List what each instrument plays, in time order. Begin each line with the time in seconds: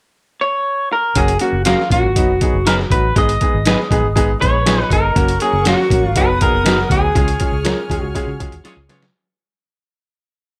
0.41 clean electric guitar C#5
0.93 clean electric guitar A#4
1.15 fingered electric bass F#1, upright piano F#3 A#3 C#4 F#4, clean electric guitar G#4, kick, closed hi-hat
1.28 closed hi-hat
1.39 upright piano F#3 A#3 C#4 F#4, clean electric guitar F#4, closed hi-hat
1.52 fingered electric bass F#1
1.65 upright piano F#3 A#3 C#4 G#4, clean electric guitar C#4 F4 F#4 A#4, snare, closed hi-hat
1.80 snare
1.90 fingered electric bass A#1, upright piano F#3 A#3 C#4 F4, clean electric guitar F#4, kick, closed hi-hat
2.03 fingered electric bass G#1
2.16 fingered electric bass F#1, upright piano F#3 B3 D#4 F#4, kick, closed hi-hat
2.41 upright piano F#3 B3 D#4 G#4, kick, closed hi-hat
2.54 fingered electric bass F#1
2.66 upright piano F#3 B3 D#4 G#4, clean electric guitar D#4 F#4 A#4 B4, snare, closed hi-hat
2.79 snare
2.90 fingered electric bass A1, upright piano F#3 B3 D#4 F#4, clean electric guitar B4, kick, closed hi-hat
3.16 fingered electric bass G#1, upright piano G#3 B3 D#4 G#4, clean electric guitar D#5, kick, closed hi-hat
3.29 closed hi-hat
3.41 upright piano G#3 B3 D#4 G#4, kick, closed hi-hat
3.54 fingered electric bass G#1
3.65 upright piano G#3 B3 D#4 G#4, clean electric guitar D#4 G#4 B4, snare, closed hi-hat
3.80 snare
3.91 fingered electric bass A#1, upright piano G#3 B3 D#4 G#4, kick, closed hi-hat
4.03 fingered electric bass G#1
4.15 upright piano G#3 B3 D#4 G#4, kick, closed hi-hat
4.40 fingered electric bass A#1, upright piano G#3 B3 D#4 G#4, clean electric guitar B4 C#5, vibraphone C#5, kick, closed hi-hat
4.65 upright piano G#3 B3 D#4 F4, clean electric guitar D#4 G#4 B4, snare, closed hi-hat
4.78 clean electric guitar D#4, snare
4.90 fingered electric bass G1, upright piano G#3 B3 D#4 G#4, vibraphone A#4, clean electric guitar A#4, kick, closed hi-hat
5.15 fingered electric bass F#1, upright piano F#3 A#3 C#4 F#4, string section A#4 F#5 C#6, kick, closed hi-hat
5.28 closed hi-hat
5.40 upright piano F#3 A#3 C#4 F#4, vibraphone G#4, clean electric guitar G#4, closed hi-hat
5.53 fingered electric bass F#1
5.65 upright piano F#3 A#3 C#4 F#4, clean electric guitar C#4 F#4 A#4, snare, closed hi-hat
5.80 snare
5.90 fingered electric bass A#1, upright piano F#3 A#3 C#4 F#4, kick, closed hi-hat
6.03 fingered electric bass G#1, clean electric guitar F4
6.15 fingered electric bass F#1, upright piano F#3 B3 D#4 F#4, string section B3 F#5 D#6, vibraphone B4, clean electric guitar B4, kick, closed hi-hat
6.40 upright piano F#3 B3 D#4 G#4, vibraphone A#4, clean electric guitar A#4, kick, closed hi-hat
6.53 fingered electric bass F#1
6.65 upright piano F#3 B3 D#4 G#4, clean electric guitar D#4 F#4 B4, snare, closed hi-hat
6.78 snare
6.90 fingered electric bass D2, upright piano F#3 B3 D#4 F#4, vibraphone G#4, clean electric guitar G#4, kick, closed hi-hat
7.15 fingered electric bass C#2, upright piano G#3 C#4 F4 G#4, string section C#5 G#5 F6, kick, closed hi-hat
7.28 closed hi-hat
7.40 upright piano G#3 C#4 F4 G#4, kick, closed hi-hat
7.52 fingered electric bass C#2
7.64 upright piano G#3 C#4 F4 A#4, clean electric guitar F4 G#4 C#5, snare, closed hi-hat
7.90 fingered electric bass D#2, upright piano G#3 C#4 F4 G#4, kick, closed hi-hat
8.02 fingered electric bass C#2, clean electric guitar F#4
8.15 upright piano G#3 C#4 F4 G#4, kick, closed hi-hat
8.27 fingered electric bass C#3
8.40 fingered electric bass C#2, upright piano G#3 C#4 F4 G#4, kick, closed hi-hat
8.52 closed hi-hat
8.64 upright piano G#3 C#4 F4 G#4, clean electric guitar F4 G#4 C#5, horn section F4 G#4 C#5, snare, closed hi-hat
8.77 fingered electric bass C#2
8.89 fingered electric bass C#3, upright piano G#3 C#4 F4 B4, horn section F4 G#4 C#5, snare, closed hi-hat
9.03 snare